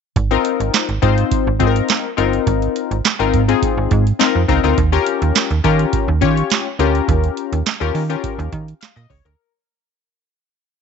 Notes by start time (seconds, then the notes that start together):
0.16 G#1, kick, closed hi-hat
0.31 C4 D#4 F4 A#4, closed hi-hat
0.45 closed hi-hat
0.60 G#1, closed hi-hat
0.74 snare, clap, closed hi-hat
0.89 G#1, closed hi-hat
1.02 G#2 C4 D#4 F4 C5, kick, closed hi-hat
1.18 closed hi-hat
1.31 kick, closed hi-hat
1.47 G#1
1.60 G#2 C4 D#4 F4 G#4, kick, closed hi-hat
1.67 A#4
1.76 closed hi-hat
1.89 snare, clap, closed hi-hat
2.17 G1 C4 D#4 F4 A#4, closed hi-hat
2.33 closed hi-hat
2.47 G#1, kick, closed hi-hat
2.62 closed hi-hat
2.76 closed hi-hat
2.91 G#1, closed hi-hat
3.05 snare, clap, closed hi-hat
3.19 G#1 C4 D#4 F4 A#4, closed hi-hat
3.34 G#2, kick, closed hi-hat
3.48 C4 D#4 F4 G#4, closed hi-hat
3.62 kick, closed hi-hat
3.77 G#1
3.91 G#2, kick, closed hi-hat
4.07 closed hi-hat
4.19 C4 D#4 F4 A#4, snare, clap, closed hi-hat
4.35 F2
4.48 C#2 C4 D#4 F4 A#4, kick, closed hi-hat
4.63 D2 C4 D#4 F4 A#4, closed hi-hat
4.78 D#2, kick, closed hi-hat
4.92 C#4 F4 G4 A#4, closed hi-hat
5.06 closed hi-hat
5.22 D#2, closed hi-hat
5.35 snare, clap, closed hi-hat
5.51 D#2, closed hi-hat
5.64 D#3 C#4 F4 G4 A#4, kick, closed hi-hat
5.79 closed hi-hat
5.93 kick, closed hi-hat
6.08 D#2
6.21 D#3 C#4 F4 G4 C#5, kick, closed hi-hat
6.37 closed hi-hat
6.50 snare, clap, closed hi-hat
6.79 D2 C#4 F4 G4 A#4, closed hi-hat
6.95 closed hi-hat
7.08 D#2, kick, closed hi-hat
7.24 closed hi-hat
7.37 closed hi-hat
7.53 D#2, closed hi-hat
7.66 snare, clap, closed hi-hat
7.80 D#2 C#4 F4 G4 A#4, closed hi-hat
7.95 D#3, open hi-hat
8.09 C#4 F4 G4 A#4, closed hi-hat
8.24 kick, closed hi-hat
8.39 D#2, closed hi-hat
8.52 D#3, kick, closed hi-hat
8.68 closed hi-hat
8.81 F5, snare, clap, closed hi-hat
8.96 A#2 D#5, closed hi-hat
9.10 C#2 C#5, kick, open hi-hat
9.25 D2 A#4, closed hi-hat